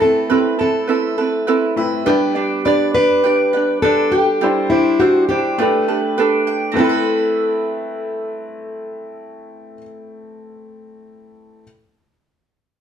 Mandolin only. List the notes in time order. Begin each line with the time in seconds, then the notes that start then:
Already playing: C4 A4 E5
0.00 E4
0.30 B4
0.59 E4
0.89 E5
1.18 B4
1.48 E4
1.77 E5
2.06 B3
2.36 D4
2.65 B4
2.94 D4
3.24 G5
3.53 B4
3.83 D4
4.12 G5
4.41 G3
4.71 D4
5.00 C5
5.29 D4
5.59 A3
5.88 B4
6.18 D4
6.47 G5
6.72 C4
6.78 E4
6.84 B4
6.89 E5